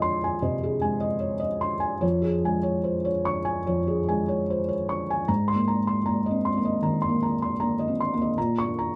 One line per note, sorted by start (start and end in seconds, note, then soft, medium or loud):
0.00 0.38 F2 medium
0.00 0.82 G#3 medium
0.00 0.63 G#4 medium
0.00 1.20 C#5 medium
0.00 0.42 D#5 medium
0.00 0.24 G#5 medium
0.00 0.34 C6 medium
0.24 0.55 G#5 medium
0.42 1.05 C3 soft
0.42 0.74 D#5 soft
0.63 0.94 G#4 medium
0.82 1.45 G#3 soft
0.82 1.13 G#5 medium
1.00 1.33 D#5 medium
1.20 1.41 C#5 soft
1.40 1.73 D#5 medium
1.61 1.94 C6 medium
1.80 2.02 G#5 soft
2.01 3.62 F2 medium
2.01 2.35 C#5 medium
2.22 2.56 G#4 soft
2.44 3.10 G#3 soft
2.44 2.78 G#5 medium
2.63 2.97 C#5 medium
2.84 3.05 C5 soft
3.05 3.38 C#5 medium
3.25 3.58 C#6 medium
3.45 3.78 G#5 medium
3.67 5.25 F2 medium
3.67 3.99 C#5 soft
3.87 4.20 G#4 soft
4.09 4.73 G#3 soft
4.09 4.41 G#5 soft
4.28 4.61 C#5 medium
4.50 4.70 C5 soft
4.69 5.01 C#5 soft
4.89 5.21 C#6 medium
5.10 5.29 G#5 soft
5.28 6.79 G#2 medium
5.28 5.60 A#5 medium
5.48 5.79 C6 medium
5.55 5.96 A#3 soft
5.68 5.99 A#5 soft
5.87 6.18 C6 soft
6.06 6.47 A#3 soft
6.06 6.37 A#5 soft
6.26 6.57 D#5 soft
6.31 6.57 C4 soft
6.45 6.76 C6 soft
6.57 6.99 A#3 soft
6.65 6.95 D#5 soft
6.82 7.24 D#3 soft
6.82 7.14 A#5 soft
7.02 7.33 C6 soft
7.09 7.50 A#3 soft
7.23 7.53 A#5 soft
7.42 7.72 C6 soft
7.60 8.01 A#3 soft
7.60 7.91 A#5 soft
7.79 8.10 D#5 soft
7.88 8.12 C4 soft
8.00 8.30 C6 soft
8.14 8.38 A#3 soft
8.22 8.39 D#5 soft
8.38 8.96 A#2 medium
8.38 8.68 A#5 medium
8.58 8.88 C#6 medium
8.66 8.96 A#3 soft
8.79 8.96 A#5 soft